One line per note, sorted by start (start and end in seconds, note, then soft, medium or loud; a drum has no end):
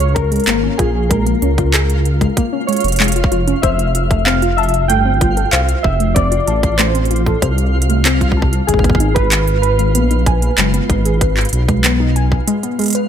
0.00 0.40 C#2 loud
0.00 13.08 F4 medium
0.00 0.17 C#5 loud
0.00 closed hi-hat soft
0.14 0.80 A#4 loud
0.14 kick loud
0.14 closed hi-hat medium
0.32 0.43 G#3 medium
0.32 closed hi-hat soft
0.36 closed hi-hat soft
0.40 closed hi-hat soft
0.44 0.70 G#1 loud
0.44 clap loud
0.44 closed hi-hat soft
0.48 0.58 A#3 loud
0.48 closed hi-hat medium
0.63 0.74 C#4 medium
0.78 1.35 A#1 loud
0.78 0.94 F4 medium
0.78 1.11 G#4 medium
0.78 kick loud
0.78 closed hi-hat medium
1.09 1.26 G#3 loud
1.09 2.32 A#4 medium
1.09 kick loud
1.09 closed hi-hat medium
1.26 1.37 A#3 medium
1.26 closed hi-hat soft
1.42 2.29 C#2 medium
1.42 1.53 C#4 medium
1.42 closed hi-hat medium
1.58 1.69 F4 medium
1.58 kick loud
1.58 closed hi-hat soft
1.74 1.80 G#4 medium
1.74 clap loud
1.74 closed hi-hat medium
1.90 closed hi-hat soft
2.05 closed hi-hat soft
2.21 2.32 G#3 medium
2.21 kick medium
2.21 closed hi-hat soft
2.37 2.48 A#3 loud
2.37 kick loud
2.37 closed hi-hat medium
2.53 2.64 C#4 medium
2.67 2.79 G#3 medium
2.67 3.65 C#5 medium
2.67 closed hi-hat soft
2.73 closed hi-hat soft
2.76 closed hi-hat soft
2.80 3.24 F1 medium
2.80 closed hi-hat soft
2.84 closed hi-hat soft
2.88 closed hi-hat soft
2.92 closed hi-hat medium
2.96 clap loud
2.96 closed hi-hat medium
3.00 3.15 G#3 medium
3.00 closed hi-hat soft
3.04 closed hi-hat medium
3.08 closed hi-hat medium
3.12 closed hi-hat medium
3.16 3.27 F4 medium
3.16 closed hi-hat soft
3.24 kick loud
3.32 3.54 F1 medium
3.32 3.38 F4 medium
3.32 closed hi-hat medium
3.48 3.58 C#4 medium
3.48 closed hi-hat soft
3.62 4.91 F1 loud
3.62 3.70 C5 medium
3.62 4.28 E5 loud
3.62 kick loud
3.62 closed hi-hat medium
3.79 closed hi-hat soft
3.95 closed hi-hat medium
4.11 4.22 A3 medium
4.11 kick loud
4.11 closed hi-hat soft
4.25 4.37 C4 loud
4.25 4.55 F5 loud
4.25 clap loud
4.42 4.53 F4 medium
4.42 closed hi-hat soft
4.57 4.90 E5 loud
4.57 4.69 A5 medium
4.57 closed hi-hat soft
4.63 closed hi-hat soft
4.69 closed hi-hat soft
4.74 closed hi-hat soft
4.88 5.45 G1 loud
4.88 5.05 A3 loud
4.88 5.54 G5 loud
4.88 closed hi-hat medium
5.05 5.16 C4 medium
5.21 5.32 F4 medium
5.21 kick loud
5.21 closed hi-hat medium
5.37 5.48 A4 medium
5.37 closed hi-hat soft
5.51 5.75 C2 loud
5.51 5.59 C5 medium
5.51 5.85 F5 loud
5.51 clap loud
5.51 closed hi-hat medium
5.69 closed hi-hat soft
5.83 6.40 F1 loud
5.83 6.16 E5 loud
5.83 kick loud
6.00 6.11 A3 medium
6.00 closed hi-hat soft
6.14 6.27 C4 loud
6.14 6.80 D5 loud
6.14 kick loud
6.14 closed hi-hat medium
6.32 6.43 F4 medium
6.32 closed hi-hat soft
6.47 7.35 A1 medium
6.47 6.58 A5 medium
6.47 closed hi-hat medium
6.63 kick loud
6.63 closed hi-hat soft
6.78 6.94 A3 loud
6.78 7.38 C5 medium
6.78 clap loud
6.78 closed hi-hat medium
6.95 7.06 C4 medium
6.95 closed hi-hat soft
7.05 closed hi-hat soft
7.11 7.22 F4 medium
7.11 closed hi-hat soft
7.16 closed hi-hat soft
7.26 7.37 A4 medium
7.26 kick medium
7.26 closed hi-hat soft
7.42 8.61 C2 loud
7.42 7.49 C5 medium
7.42 kick loud
7.42 closed hi-hat medium
7.58 closed hi-hat soft
7.82 closed hi-hat medium
7.90 8.00 A3 medium
7.90 closed hi-hat soft
8.05 8.16 C4 loud
8.05 clap loud
8.05 closed hi-hat medium
8.21 8.32 F4 medium
8.21 kick medium
8.21 closed hi-hat soft
8.32 kick medium
8.37 8.48 A5 medium
8.42 kick medium
8.53 closed hi-hat soft
8.67 9.96 G#1 loud
8.67 8.84 G#3 loud
8.67 9.17 G#4 loud
8.67 kick soft
8.67 closed hi-hat medium
8.74 kick medium
8.79 kick medium
8.84 8.95 B3 medium
8.84 kick medium
8.84 closed hi-hat soft
8.90 kick medium
8.95 kick loud
9.00 9.11 D#4 medium
9.00 closed hi-hat medium
9.14 9.27 G#4 medium
9.14 9.61 B4 loud
9.14 kick loud
9.14 closed hi-hat soft
9.32 9.38 B4 medium
9.32 clap loud
9.32 closed hi-hat medium
9.48 closed hi-hat soft
9.62 13.06 B4 loud
9.62 closed hi-hat soft
9.79 9.90 G#3 medium
9.79 closed hi-hat soft
9.95 10.50 A#1 loud
9.95 10.06 B3 loud
9.95 closed hi-hat medium
10.11 10.22 D#4 medium
10.11 closed hi-hat soft
10.26 10.37 G#5 medium
10.26 kick loud
10.26 closed hi-hat medium
10.42 closed hi-hat soft
10.58 10.80 F#1 loud
10.58 10.73 G#3 loud
10.58 clap loud
10.58 closed hi-hat medium
10.74 10.85 B3 medium
10.74 closed hi-hat soft
10.90 11.45 G#1 loud
10.90 11.00 D#4 medium
10.90 kick loud
10.90 closed hi-hat medium
11.05 11.16 G#4 medium
11.05 closed hi-hat soft
11.21 11.28 B4 medium
11.21 kick loud
11.21 closed hi-hat medium
11.37 clap medium
11.37 closed hi-hat soft
11.41 closed hi-hat soft
11.45 closed hi-hat soft
11.49 12.40 B1 medium
11.49 closed hi-hat soft
11.53 closed hi-hat medium
11.69 11.79 G#3 medium
11.69 kick loud
11.69 closed hi-hat soft
11.84 11.95 B3 loud
11.84 clap loud
11.84 closed hi-hat medium
12.00 12.11 D#4 medium
12.16 12.27 G#5 medium
12.16 closed hi-hat soft
12.32 kick medium
12.48 12.63 G#3 loud
12.48 closed hi-hat medium
12.63 12.74 B3 medium
12.63 closed hi-hat soft
12.79 12.94 G#3 loud
12.79 closed hi-hat soft
12.81 closed hi-hat soft
12.84 closed hi-hat soft
12.86 closed hi-hat soft
12.88 closed hi-hat soft
12.90 closed hi-hat medium
12.93 closed hi-hat medium
12.95 13.06 B4 medium
12.95 closed hi-hat soft